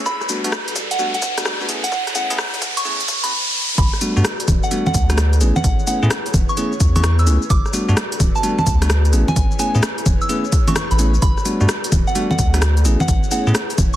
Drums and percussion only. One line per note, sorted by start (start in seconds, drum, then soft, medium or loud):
0.06 kick loud
0.06 shaker soft
0.21 cross-stick soft
0.21 shaker soft
0.29 open hi-hat loud
0.29 shaker medium
0.44 closed hi-hat medium
0.44 shaker soft
0.52 cross-stick loud
0.52 shaker soft
0.68 closed hi-hat medium
0.68 shaker soft
0.76 kick loud
0.76 open hi-hat loud
0.76 shaker medium
0.91 closed hi-hat medium
0.91 shaker soft
0.99 shaker soft
1.14 closed hi-hat soft
1.14 shaker soft
1.22 kick loud
1.22 open hi-hat loud
1.22 shaker medium
1.38 cross-stick medium
1.38 closed hi-hat medium
1.38 shaker soft
1.45 cross-stick loud
1.45 shaker soft
1.61 shaker soft
1.69 open hi-hat loud
1.69 shaker medium
1.84 closed hi-hat medium
1.84 shaker soft
1.92 kick loud
1.92 shaker soft
2.07 cross-stick soft
2.07 closed hi-hat soft
2.07 shaker soft
2.15 open hi-hat loud
2.15 shaker medium
2.30 closed hi-hat medium
2.30 shaker soft
2.38 cross-stick loud
2.38 shaker soft
2.54 kick medium
2.54 open hi-hat medium
2.54 shaker soft
2.62 kick loud
2.62 open hi-hat loud
2.62 shaker medium
2.77 closed hi-hat medium
2.77 shaker soft
2.85 shaker soft
3.00 closed hi-hat soft
3.00 shaker soft
3.08 kick loud
3.08 open hi-hat loud
3.08 shaker medium
3.24 closed hi-hat medium
3.24 shaker soft
3.78 kick loud
3.78 closed hi-hat medium
3.78 shaker soft
3.93 cross-stick soft
3.93 shaker soft
4.01 open hi-hat loud
4.01 shaker medium
4.17 shaker soft
4.25 cross-stick loud
4.25 closed hi-hat medium
4.25 shaker soft
4.40 closed hi-hat medium
4.40 shaker soft
4.48 kick loud
4.48 open hi-hat loud
4.48 high conga medium
4.48 shaker medium
4.63 shaker soft
4.71 closed hi-hat medium
4.71 shaker soft
4.86 high conga medium
4.86 shaker soft
4.94 kick loud
4.94 open hi-hat loud
4.94 shaker medium
5.10 cross-stick medium
5.10 closed hi-hat medium
5.10 shaker soft
5.18 cross-stick loud
5.18 closed hi-hat medium
5.18 shaker soft
5.33 closed hi-hat soft
5.33 shaker soft
5.41 open hi-hat loud
5.41 shaker medium
5.56 high conga medium
5.56 shaker soft
5.64 kick loud
5.64 closed hi-hat medium
5.64 shaker soft
5.79 shaker soft
5.87 open hi-hat loud
5.87 shaker medium
6.03 shaker soft
6.10 cross-stick loud
6.10 closed hi-hat medium
6.10 shaker soft
6.26 open hi-hat medium
6.26 shaker soft
6.34 kick loud
6.34 open hi-hat loud
6.34 high conga medium
6.34 shaker medium
6.49 shaker soft
6.57 closed hi-hat medium
6.57 shaker soft
6.72 shaker soft
6.80 kick loud
6.80 open hi-hat loud
6.80 shaker medium
6.96 closed hi-hat medium
6.96 high conga medium
6.96 shaker soft
7.04 cross-stick loud
7.04 closed hi-hat medium
7.04 shaker soft
7.19 closed hi-hat soft
7.19 shaker soft
7.27 open hi-hat loud
7.27 shaker medium
7.42 shaker soft
7.50 kick loud
7.50 closed hi-hat medium
7.50 shaker soft
7.66 cross-stick soft
7.66 shaker soft
7.73 open hi-hat loud
7.73 shaker medium
7.89 shaker soft
7.97 cross-stick loud
7.97 closed hi-hat medium
7.97 shaker soft
8.12 closed hi-hat medium
8.12 shaker soft
8.20 kick loud
8.20 open hi-hat loud
8.20 high conga medium
8.20 shaker medium
8.35 shaker soft
8.43 closed hi-hat medium
8.43 shaker soft
8.59 high conga medium
8.59 shaker soft
8.66 kick loud
8.66 open hi-hat loud
8.66 shaker medium
8.82 cross-stick medium
8.82 closed hi-hat medium
8.82 shaker soft
8.90 cross-stick loud
8.90 closed hi-hat medium
8.90 shaker soft
9.05 closed hi-hat soft
9.05 shaker soft
9.13 open hi-hat loud
9.13 shaker medium
9.28 high conga medium
9.28 shaker soft
9.36 kick loud
9.36 closed hi-hat medium
9.36 shaker soft
9.51 shaker soft
9.59 open hi-hat loud
9.59 shaker medium
9.75 shaker soft
9.83 cross-stick loud
9.83 closed hi-hat medium
9.83 shaker soft
9.98 open hi-hat medium
9.98 shaker soft
10.06 kick loud
10.06 open hi-hat loud
10.06 high conga medium
10.06 shaker medium
10.21 shaker soft
10.29 closed hi-hat medium
10.29 shaker soft
10.44 shaker soft
10.52 kick loud
10.52 open hi-hat loud
10.52 shaker medium
10.68 closed hi-hat medium
10.68 high conga medium
10.68 shaker soft
10.76 cross-stick loud
10.76 closed hi-hat medium
10.76 shaker soft
10.91 closed hi-hat soft
10.91 shaker soft
10.99 open hi-hat loud
10.99 shaker medium
11.14 shaker soft
11.22 kick loud
11.22 closed hi-hat medium
11.22 shaker soft
11.38 cross-stick soft
11.38 shaker soft
11.45 open hi-hat loud
11.45 shaker medium
11.61 shaker soft
11.69 cross-stick loud
11.69 closed hi-hat medium
11.69 shaker soft
11.84 closed hi-hat medium
11.84 shaker soft
11.92 kick loud
11.92 open hi-hat loud
11.92 high conga medium
11.92 shaker medium
12.07 shaker soft
12.15 closed hi-hat medium
12.15 shaker soft
12.31 high conga medium
12.31 shaker soft
12.39 kick loud
12.39 open hi-hat loud
12.39 shaker medium
12.54 cross-stick medium
12.54 closed hi-hat medium
12.54 shaker soft
12.62 cross-stick loud
12.62 closed hi-hat medium
12.62 shaker soft
12.77 closed hi-hat soft
12.77 shaker soft
12.85 open hi-hat loud
12.85 shaker medium
13.00 high conga medium
13.00 shaker soft
13.08 kick loud
13.08 closed hi-hat medium
13.08 shaker soft
13.24 shaker soft
13.31 open hi-hat loud
13.31 shaker medium
13.47 shaker soft
13.55 cross-stick loud
13.55 closed hi-hat medium
13.55 shaker soft
13.70 open hi-hat medium
13.70 shaker soft
13.78 kick loud
13.78 open hi-hat loud
13.78 high conga medium
13.78 shaker medium
13.93 shaker soft